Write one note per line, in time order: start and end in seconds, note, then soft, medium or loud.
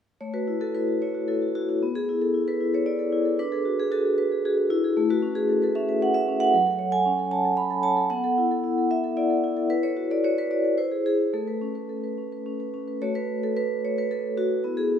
0.21 1.77 A3 soft
0.21 0.34 C#5 medium
0.34 0.56 F#4 soft
0.34 0.61 B4 medium
0.48 0.69 E4 soft
0.61 0.83 F#4 soft
0.61 0.75 A4 medium
0.75 0.96 E4 soft
0.75 1.02 B4 medium
0.88 1.10 F#4 soft
1.02 1.23 E4 soft
1.02 1.28 C#5 medium
1.15 1.36 F#4 soft
1.28 1.49 E4 soft
1.28 1.55 A4 medium
1.42 1.54 F#4 soft
1.55 1.76 E4 soft
1.55 1.68 F#4 medium
1.69 1.82 F#4 soft
1.83 3.35 B3 soft
1.95 2.21 G#4 medium
1.95 2.16 A4 soft
2.09 2.29 E4 soft
2.22 2.47 A4 medium
2.34 2.55 E4 soft
2.48 2.68 A4 soft
2.48 2.73 B4 medium
2.61 2.81 E4 soft
2.73 2.94 A4 soft
2.73 2.87 C#5 medium
2.86 3.07 E4 soft
2.86 3.38 D5 medium
2.99 3.20 A4 soft
3.12 3.33 E4 soft
3.25 3.38 A4 soft
3.39 4.93 D4 soft
3.39 3.52 B4 medium
3.52 3.73 G#4 soft
3.52 3.78 A4 medium
3.65 3.86 F#4 soft
3.80 3.92 G#4 medium
3.92 4.12 F#4 soft
3.92 4.18 A4 medium
4.05 4.26 G#4 soft
4.18 4.39 F#4 soft
4.18 4.44 B4 medium
4.32 4.44 G#4 soft
4.45 4.66 F#4 soft
4.45 4.57 G#4 medium
4.58 4.78 G#4 soft
4.70 5.09 E4 medium
4.70 4.91 F#4 soft
4.84 4.97 G#4 soft
4.97 6.49 A3 soft
5.10 5.36 F#4 medium
5.10 5.30 B4 soft
5.22 5.43 C#4 soft
5.35 5.61 G#4 medium
5.35 5.56 B4 soft
5.49 5.62 A4 soft
5.62 5.75 A4 medium
5.62 5.83 B4 soft
5.75 5.96 C#4 soft
5.75 6.01 E5 medium
5.89 6.09 B4 soft
6.02 6.22 C#4 soft
6.02 6.14 F#5 medium
6.14 6.35 B4 soft
6.14 6.40 E5 medium
6.28 6.48 C#4 soft
6.40 6.53 B4 soft
6.40 6.92 F#5 medium
6.54 8.06 F#3 soft
6.66 6.87 A4 soft
6.79 6.99 C#5 soft
6.92 7.13 A4 soft
6.92 7.31 G#5 medium
7.06 7.26 C#4 soft
7.19 7.39 A4 soft
7.31 7.52 C#5 soft
7.31 7.57 A5 medium
7.45 7.65 A4 soft
7.57 7.78 C#4 soft
7.57 7.83 B5 medium
7.71 7.91 A4 soft
7.83 8.04 C#5 soft
7.83 8.10 A5 medium
7.97 8.10 A4 soft
8.10 9.65 B3 soft
8.10 8.90 F#5 medium
8.24 8.45 A4 soft
8.38 8.58 E4 soft
8.51 8.72 A4 soft
8.64 8.85 E4 soft
8.78 8.98 A4 soft
8.91 9.12 E4 soft
8.91 9.17 E5 medium
9.04 9.24 A4 soft
9.17 9.37 E4 soft
9.17 9.43 D5 medium
9.30 9.51 A4 soft
9.44 9.64 E4 soft
9.57 9.69 A4 soft
9.70 10.74 E4 soft
9.70 9.83 B4 medium
9.83 10.04 A4 soft
9.83 10.10 C#5 medium
9.97 10.18 F#4 soft
10.10 10.31 A4 soft
10.10 10.24 D5 medium
10.24 10.45 F#4 soft
10.24 10.37 C#5 medium
10.38 10.59 A4 soft
10.38 10.51 B4 medium
10.51 10.72 F#4 soft
10.51 10.78 D5 medium
10.64 10.78 A4 soft
10.78 11.05 E4 soft
10.78 11.06 C5 medium
10.92 11.05 G#4 soft
11.06 11.28 E4 soft
11.06 11.19 G#4 medium
11.33 12.98 A3 soft
11.33 11.88 A4 medium
11.48 11.70 B4 soft
11.61 11.84 C#4 soft
11.75 11.98 B4 soft
11.89 12.12 A4 soft
12.04 12.26 B4 soft
12.18 12.40 C#4 soft
12.32 12.54 B4 soft
12.46 12.68 C#4 soft
12.60 12.82 B4 soft
12.74 12.96 C#4 soft
12.88 13.02 B4 soft
13.01 14.59 A3 soft
13.01 14.36 F#4 soft
13.01 13.42 A4 soft
13.01 13.15 C#5 medium
13.15 13.43 B4 medium
13.43 13.57 A4 medium
13.57 13.83 B4 medium
13.85 13.97 C#5 medium
13.98 14.11 B4 medium
14.11 14.37 A4 medium
14.38 14.77 F#4 medium
14.64 14.99 B3 soft
14.64 14.99 E4 soft
14.64 14.99 A4 soft
14.77 14.99 G#4 medium